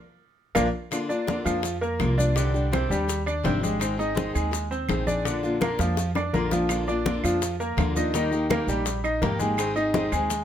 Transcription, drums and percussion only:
0.55 low bongo medium
0.55 high conga medium
0.55 claves medium
0.55 maracas medium
0.92 high bongo medium
0.92 high conga soft
0.92 claves medium
0.92 maracas medium
1.10 high bongo soft
1.10 high conga soft
1.10 maracas soft
1.27 high bongo medium
1.27 high conga medium
1.27 maracas soft
1.46 high bongo soft
1.46 high conga soft
1.46 claves medium
1.46 maracas medium
1.63 high bongo medium
1.63 high conga soft
1.63 maracas medium
1.83 high conga soft
1.83 maracas soft
2.00 high bongo medium
2.00 low bongo medium
2.00 high conga medium
2.00 claves medium
2.00 maracas soft
2.18 high bongo soft
2.18 high conga medium
2.18 maracas medium
2.36 high bongo medium
2.36 high conga soft
2.36 maracas medium
2.54 high bongo soft
2.54 high conga soft
2.54 maracas soft
2.73 high bongo medium
2.73 high conga medium
2.73 claves medium
2.73 maracas soft
2.91 high bongo soft
2.91 high conga soft
2.91 maracas medium
3.09 high bongo medium
3.09 high conga soft
3.09 maracas medium
3.27 high conga soft
3.27 claves medium
3.27 maracas soft
3.45 high bongo medium
3.45 low bongo medium
3.45 high conga medium
3.45 maracas soft
3.63 high bongo soft
3.63 high conga medium
3.63 maracas medium
3.81 high bongo medium
3.81 claves medium
3.81 maracas medium
3.99 high bongo soft
3.99 high conga soft
3.99 maracas soft
4.17 high bongo medium
4.17 high conga medium
4.17 maracas soft
4.35 high bongo soft
4.35 high conga soft
4.35 claves medium
4.35 maracas medium
4.53 high bongo medium
4.53 high conga soft
4.53 maracas medium
4.71 high conga soft
4.71 maracas soft
4.89 high bongo medium
4.89 low bongo medium
4.89 high conga medium
4.89 claves medium
4.89 maracas soft
5.07 high bongo soft
5.07 high conga medium
5.07 maracas medium
5.25 high bongo medium
5.25 high conga soft
5.25 maracas medium
5.43 high bongo soft
5.43 high conga soft
5.43 maracas soft
5.61 high bongo medium
5.61 high conga medium
5.61 claves medium
5.61 maracas soft
5.79 high bongo medium
5.79 high conga soft
5.79 maracas medium
5.97 high bongo medium
5.97 high conga soft
5.97 maracas medium
6.15 low bongo medium
6.15 high conga soft
6.15 claves medium
6.15 maracas soft
6.34 high conga medium
6.34 maracas soft
6.51 low bongo medium
6.51 high conga medium
6.51 maracas medium
6.69 high bongo medium
6.69 high conga soft
6.69 claves medium
6.69 maracas medium
6.87 high bongo soft
6.87 high conga soft
6.87 maracas soft
7.06 high bongo medium
7.06 high conga medium
7.06 maracas soft
7.24 high bongo soft
7.24 high conga soft
7.24 claves medium
7.24 maracas medium
7.42 high bongo medium
7.42 high conga soft
7.42 maracas medium
7.60 high conga soft
7.60 maracas soft
7.78 high bongo medium
7.78 low bongo medium
7.78 high conga medium
7.78 claves medium
7.78 maracas soft
7.96 high bongo soft
7.96 high conga medium
7.96 maracas medium
8.14 high bongo medium
8.14 high conga soft
8.14 maracas medium
8.32 high bongo soft
8.32 high conga soft
8.32 maracas soft
8.50 high bongo medium
8.50 high conga loud
8.50 claves medium
8.50 maracas soft
8.68 high bongo soft
8.68 high conga soft
8.68 maracas medium
8.86 high bongo medium
8.86 high conga soft
8.86 maracas medium
9.04 high conga soft
9.04 claves medium
9.04 maracas soft
9.22 high bongo medium
9.22 low bongo medium
9.22 high conga medium
9.22 maracas soft
9.40 high bongo soft
9.40 high conga medium
9.40 maracas medium
9.58 high bongo medium
9.58 high conga soft
9.58 claves medium
9.58 maracas medium
9.76 high bongo soft
9.76 high conga soft
9.76 maracas soft
9.94 high bongo medium
9.94 high conga loud
9.94 maracas soft
10.12 high bongo soft
10.12 high conga soft
10.12 claves medium
10.12 maracas medium
10.30 high bongo medium
10.30 high conga soft
10.30 maracas medium

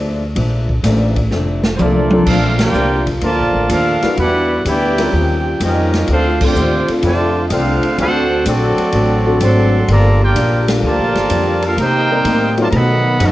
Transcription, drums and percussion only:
0.36 kick soft
0.36 ride medium
0.69 kick medium
0.84 snare soft
0.84 hi-hat pedal medium
0.84 ride medium
1.16 kick medium
1.16 ride medium
1.31 snare medium
1.64 snare medium
1.79 hi-hat pedal medium
1.79 high tom medium
2.11 high tom loud
2.27 kick medium
2.27 crash medium
2.59 snare medium
2.59 ride medium
2.74 hi-hat pedal medium
3.07 kick medium
3.07 ride medium
3.21 kick soft
3.21 ride medium
3.69 kick soft
3.69 hi-hat pedal medium
3.69 ride medium
4.02 snare soft
4.02 ride medium
4.17 kick soft
4.17 ride medium
4.65 kick soft
4.65 hi-hat pedal medium
4.65 ride medium
4.98 snare soft
4.98 ride medium
5.13 kick soft
5.61 kick soft
5.61 hi-hat pedal medium
5.61 ride medium
5.94 snare medium
5.94 ride medium
6.08 kick soft
6.08 ride medium
6.41 kick loud
6.41 crash medium
6.55 hi-hat pedal medium
6.88 ride medium
7.03 kick soft
7.03 ride medium
7.50 kick soft
7.50 hi-hat pedal medium
7.50 ride medium
7.83 ride medium
7.98 kick soft
7.98 ride medium
8.45 kick soft
8.45 hi-hat pedal medium
8.45 ride medium
8.78 ride medium
8.92 kick soft
8.92 ride medium
9.41 kick soft
9.41 hi-hat pedal medium
9.41 ride medium
9.88 kick soft
9.88 ride medium
10.36 kick soft
10.36 hi-hat pedal medium
10.36 ride medium
10.68 snare medium
10.68 ride medium
10.83 kick soft
11.15 snare medium
11.15 ride medium
11.30 kick soft
11.30 hi-hat pedal medium
11.30 ride medium
11.62 ride medium
11.78 kick soft
11.78 ride medium
12.25 kick soft
12.25 hi-hat pedal medium
12.25 ride medium
12.58 ride medium
12.73 kick soft
12.73 ride medium
13.20 kick soft
13.20 hi-hat pedal medium
13.20 ride medium

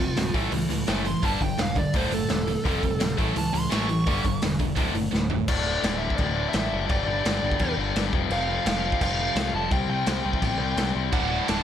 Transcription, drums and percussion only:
0.17 snare loud
0.17 open hi-hat medium
0.34 kick loud
0.34 open hi-hat medium
0.52 open hi-hat medium
0.70 open hi-hat medium
0.87 snare loud
0.87 open hi-hat medium
1.05 open hi-hat medium
1.23 kick loud
1.23 open hi-hat medium
1.41 kick medium
1.41 open hi-hat medium
1.58 snare loud
1.58 open hi-hat medium
1.75 kick medium
1.75 open hi-hat medium
1.93 kick loud
1.93 open hi-hat medium
2.12 open hi-hat medium
2.29 snare loud
2.29 open hi-hat medium
2.47 open hi-hat medium
2.65 kick loud
2.65 open hi-hat medium
2.83 kick medium
2.83 open hi-hat medium
3.00 snare loud
3.00 open hi-hat medium
3.18 kick loud
3.18 open hi-hat medium
3.36 open hi-hat medium
3.54 open hi-hat medium
3.71 snare loud
3.71 open hi-hat medium
3.89 open hi-hat medium
4.07 kick loud
4.07 open hi-hat medium
4.25 kick medium
4.25 open hi-hat medium
4.42 snare loud
4.42 open hi-hat medium
4.59 kick medium
4.59 open hi-hat medium
4.76 kick loud
4.76 open hi-hat medium
4.95 open hi-hat medium
5.14 snare medium
5.30 floor tom medium
5.48 kick loud
5.48 crash loud
5.48 crash medium
5.83 snare loud
5.83 crash medium
6.10 kick medium
6.18 kick loud
6.18 crash medium
6.53 snare loud
6.53 crash medium
6.89 kick loud
6.89 crash medium
7.25 snare loud
7.25 crash medium
7.52 kick medium
7.59 kick loud
7.59 crash medium
7.96 snare loud
7.96 crash medium
8.13 kick loud
8.30 crash medium
8.66 snare loud
8.66 crash medium
8.92 kick loud
9.01 kick loud
9.01 crash medium
9.36 snare loud
9.36 crash medium
9.71 kick loud
9.71 crash medium
10.06 snare loud
10.06 crash medium
10.33 kick medium
10.42 kick loud
10.42 crash medium
10.77 snare loud
10.77 crash medium
11.12 kick loud
11.12 crash medium
11.48 snare loud
11.48 crash medium

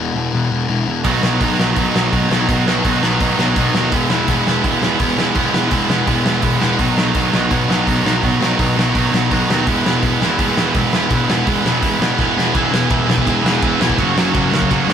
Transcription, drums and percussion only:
1.04 kick loud
1.04 open hi-hat soft
1.23 snare loud
1.41 kick loud
1.41 open hi-hat soft
1.60 snare medium
1.76 kick loud
1.76 open hi-hat soft
1.96 snare loud
2.13 kick loud
2.13 open hi-hat soft
2.32 snare loud
2.49 kick loud
2.49 open hi-hat medium
2.68 snare loud
2.85 kick loud
2.85 open hi-hat medium
3.03 snare loud
3.20 kick loud
3.20 open hi-hat medium
3.39 snare loud
3.56 kick loud
3.56 open hi-hat medium
3.75 snare loud
3.92 kick loud
3.92 open hi-hat medium
4.10 snare loud
4.28 kick loud
4.28 open hi-hat medium
4.47 snare medium
4.64 kick loud
4.64 open hi-hat soft
4.83 snare loud
4.99 kick loud
4.99 open hi-hat medium
5.19 snare loud
5.35 kick loud
5.35 open hi-hat medium
5.54 snare loud
5.71 kick loud
5.71 open hi-hat medium
5.90 snare loud
6.07 kick loud
6.07 open hi-hat medium
6.26 snare loud
6.42 kick loud
6.42 open hi-hat medium
6.62 snare loud
6.79 kick loud
6.79 open hi-hat medium
6.98 snare loud
7.14 kick loud
7.14 open hi-hat medium
7.34 snare loud
7.51 kick loud
7.51 open hi-hat soft
7.71 snare loud
7.87 kick loud
7.87 open hi-hat medium
8.06 snare loud
8.23 kick medium
8.23 open hi-hat soft
8.43 snare loud
8.59 kick loud
8.59 open hi-hat medium
8.79 snare loud
8.95 kick loud
8.95 open hi-hat soft
9.14 snare loud
9.31 kick loud
9.31 open hi-hat medium
9.50 snare loud
9.67 kick loud
9.67 open hi-hat medium
9.86 snare loud
10.03 kick loud
10.03 open hi-hat medium
10.22 snare loud
10.39 kick loud
10.39 open hi-hat medium
10.57 snare loud
10.74 kick loud
10.74 open hi-hat soft
10.93 snare loud
11.10 kick loud
11.10 open hi-hat soft
11.30 snare loud
11.47 kick loud
11.47 open hi-hat soft
11.66 snare loud
11.82 kick loud
11.82 open hi-hat soft
12.02 snare loud
12.19 kick loud
12.19 snare medium
12.38 snare medium
12.55 kick loud
12.55 ride medium
12.74 snare loud
12.90 kick loud
12.90 ride medium
13.10 snare loud
13.18 kick medium
13.27 kick medium
13.27 ride medium
13.46 snare loud
13.62 kick loud
13.62 ride medium
13.81 snare loud
13.90 kick medium
13.98 kick medium
13.98 ride medium
14.18 snare loud
14.34 kick loud
14.34 ride medium
14.54 snare loud
14.62 kick medium
14.71 kick medium
14.71 ride medium
14.90 snare loud

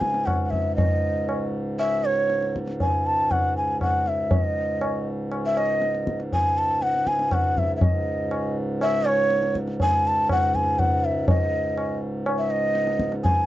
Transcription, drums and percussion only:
0.01 tabla ke soft
0.14 tabla te medium
0.27 tabla na medium
0.27 tabla ge medium
0.53 tabla ge medium
0.78 tabla tin medium
0.78 tabla ge medium
1.29 tabla na medium
1.79 tabla na medium
2.30 tabla te medium
2.42 tabla te soft
2.56 tabla ke soft
2.68 tabla te soft
2.80 tabla tin medium
2.80 tabla ge medium
3.31 tabla na medium
3.31 tabla ge medium
3.81 tabla na medium
3.81 tabla ge medium
4.06 tabla te soft
4.31 tabla tin medium
4.31 tabla ge medium
4.81 tabla na medium
5.32 tabla na medium
5.57 tabla na medium
5.82 tabla te medium
5.95 tabla te soft
6.07 tabla ke soft
6.20 tabla te medium
6.33 tabla tin medium
6.33 tabla ge medium
6.82 tabla te medium
6.94 tabla te soft
7.07 tabla ke soft
7.19 tabla te medium
7.31 tabla na medium
7.31 tabla ge medium
7.57 tabla ge soft
7.81 tabla tin medium
7.81 tabla ge medium
8.31 tabla na medium
8.81 tabla na medium
9.06 tabla na medium
9.30 tabla te medium
9.43 tabla te medium
9.55 tabla ke medium
9.68 tabla te medium
9.80 tabla tin medium
9.80 tabla ge medium
10.29 tabla na medium
10.29 tabla ge medium
10.55 tabla ge soft
10.79 tabla tin medium
10.79 tabla ge medium
11.28 tabla tin loud
11.28 tabla ge medium
11.78 tabla na medium
12.26 tabla na medium
12.75 tabla te medium
12.87 tabla te medium
12.99 tabla ke medium
13.12 tabla te medium
13.25 tabla tin medium
13.25 tabla ge medium

